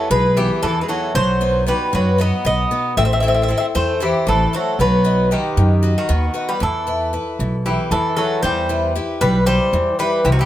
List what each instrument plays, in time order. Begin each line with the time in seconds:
Already playing: bouzouki F#3, steel-string acoustic guitar B3 E4 G#4
0.10 upright bass B1, steel-string acoustic guitar B2, bouzouki G#3 B4
0.37 bouzouki E3 G4, steel-string acoustic guitar B3 E4 G#4
0.63 upright bass E2, steel-string acoustic guitar E3, bouzouki E3 A4
0.81 bouzouki G#3 B4
0.88 bouzouki F#3 A4, steel-string acoustic guitar B3 E4 G#4
1.15 upright bass B1, steel-string acoustic guitar B2, bouzouki F#3 C5
1.41 steel-string acoustic guitar B3 D#4 F#4
1.67 bouzouki G3 B4, steel-string acoustic guitar B3 D#4 F#4
1.93 upright bass F#2, steel-string acoustic guitar F#3, bouzouki F#3 B4
2.18 steel-string acoustic guitar B3 D#4 F#4, bouzouki B3 D#5
2.45 upright bass B1, steel-string acoustic guitar B2, bouzouki B3 D#5
2.71 steel-string acoustic guitar B3 D#4 F#4
2.97 upright bass A1, steel-string acoustic guitar A3, bouzouki C4 E5
3.05 bouzouki C4 E5
3.12 bouzouki C4 E5
3.20 bouzouki C4 E5, steel-string acoustic guitar E4 A4 C5
3.27 bouzouki C4 E5
3.34 bouzouki C4 E5
3.42 bouzouki C4 E5
3.48 bouzouki C4 E5, steel-string acoustic guitar E4 A4 C5
3.58 bouzouki C4 E5
3.75 upright bass E2, steel-string acoustic guitar E3, bouzouki A3 C5
4.00 bouzouki E3 G4, steel-string acoustic guitar E4 A4 C5
4.27 upright bass A1, bouzouki E3 A4, steel-string acoustic guitar A3
4.53 bouzouki F#3 A4, steel-string acoustic guitar E4 A4 C5
4.79 upright bass B1, bouzouki F#3 B4, steel-string acoustic guitar B3
5.04 steel-string acoustic guitar F#4 B4 D#5
5.31 bouzouki D#3 G4, steel-string acoustic guitar B4 D#5 F#5
5.57 upright bass F#2, steel-string acoustic guitar D#3
5.83 steel-string acoustic guitar F#4 B4 D#5
5.98 bouzouki D#3 F#4
6.09 upright bass D#2, steel-string acoustic guitar B3
6.34 steel-string acoustic guitar F#4 B4 D#5
6.49 bouzouki G3 B4
6.60 upright bass E2, steel-string acoustic guitar E3, bouzouki E3 A4
6.87 steel-string acoustic guitar E4 B4
7.13 steel-string acoustic guitar E4 B4
7.39 upright bass B1, steel-string acoustic guitar B2
7.66 bouzouki E3 G4, steel-string acoustic guitar E4 B4
7.91 upright bass E2, steel-string acoustic guitar E3, bouzouki E3 A4
8.16 bouzouki F#3 A4, steel-string acoustic guitar E4 G#4 B4
8.43 upright bass E2, steel-string acoustic guitar E3, bouzouki G3 C5
8.69 steel-string acoustic guitar E4 G4 B4
8.95 steel-string acoustic guitar E4 G4 B4
9.21 upright bass B1, steel-string acoustic guitar B2, bouzouki G3 B4
9.46 bouzouki G3 C5, steel-string acoustic guitar E4 G4
9.73 upright bass E2, steel-string acoustic guitar E3
9.99 bouzouki G3 B4, steel-string acoustic guitar E4 G4 B4
10.24 upright bass C2, steel-string acoustic guitar C3, bouzouki E3 G4
10.32 bouzouki D#3 F#4
10.39 bouzouki E3 G4